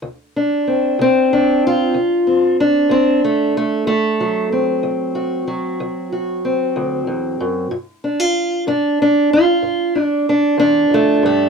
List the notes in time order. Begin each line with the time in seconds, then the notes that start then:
0.02 D2
0.36 D4
0.67 C4
0.99 D2 C4
1.33 D4
1.67 F4
1.94 D2
2.27 C4
2.60 D4
2.89 D2 C4
3.24 A3
3.57 A3
3.87 D2 A3
4.20 F#3
4.52 C4
4.83 D2
5.15 F#4
5.48 F#3
5.80 D2
6.12 F#4
6.45 C4
6.76 D2
7.07 E2
7.40 F#2
7.71 G2
8.04 D4
8.20 F4
8.67 G2 D4
9.02 D4
9.33 F4
9.62 G2
9.95 D4
10.01 D4
10.29 D4
10.57 E2 D4
10.90 F2
10.94 A3
11.23 G2 A3